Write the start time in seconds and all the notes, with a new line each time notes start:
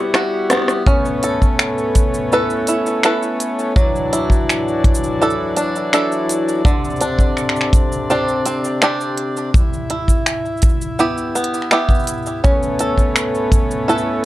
Already playing: G3 B3 E4 F#4
0.14 F#4, finger snap, cross-stick, shaker
0.50 B3, cross-stick, closed hi-hat, shaker
0.53 cross-stick
0.55 cross-stick
0.57 cross-stick
0.59 cross-stick
0.62 cross-stick
0.64 cross-stick
0.66 cross-stick
0.68 cross-stick, shaker
0.86 A3 B3 C#4, kick, shaker
1.05 shaker
1.23 A4, closed hi-hat, shaker
1.42 kick, shaker
1.59 finger snap, shaker
1.78 shaker
1.95 kick, closed hi-hat, shaker
2.14 shaker
2.32 E4 A4 B4, shaker
2.50 shaker
2.67 E4, closed hi-hat, shaker
2.86 shaker
3.03 E4 A4 B4, finger snap, shaker
3.23 shaker
3.40 closed hi-hat, shaker
3.59 shaker
3.75 E3 F#3 D4, kick, shaker
3.96 shaker
4.13 E4, closed hi-hat, shaker
4.30 kick, shaker
4.49 finger snap, shaker
4.68 shaker
4.84 kick, closed hi-hat
4.95 shaker
5.04 shaker
5.21 D4 E4 A4, shaker
5.30 shaker
5.57 D4, closed hi-hat, shaker
5.76 shaker
5.93 D4 E4 A4, finger snap, shaker
6.12 shaker
6.29 closed hi-hat, shaker
6.49 shaker
6.65 D3, kick, shaker
6.85 shaker
6.90 shaker
6.96 shaker
7.01 D4, closed hi-hat, shaker
7.19 kick, shaker
7.37 finger snap, shaker
7.49 finger snap
7.56 shaker
7.61 finger snap
7.73 kick, closed hi-hat, shaker
7.92 shaker
8.10 C4 D4 G4, shaker
8.28 shaker
8.46 C4, closed hi-hat, shaker
8.64 shaker
8.82 C4 D4 G4, finger snap, shaker
9.01 shaker
9.17 closed hi-hat
9.37 shaker
9.54 E4, kick, shaker
9.73 shaker
9.90 E4, closed hi-hat
10.08 kick, shaker
10.26 finger snap, shaker
10.46 shaker
10.57 shaker
10.62 kick, closed hi-hat, shaker
10.69 shaker
10.81 shaker
10.99 B3 E4 G4, shaker
11.18 shaker
11.35 B3, shaker
11.44 closed hi-hat
11.54 shaker
11.62 finger snap
11.71 B3 E4 G4, finger snap, shaker
11.89 kick, shaker
11.95 shaker
11.99 shaker
12.04 closed hi-hat, shaker
12.08 shaker
12.22 shaker
12.26 shaker
12.43 A3 B3 C#4, kick, shaker
12.63 shaker
12.79 A4, closed hi-hat, shaker
12.98 kick, shaker
13.16 finger snap, shaker
13.35 shaker
13.52 kick, closed hi-hat, shaker
13.71 shaker
13.88 E4 A4 B4, shaker
13.98 shaker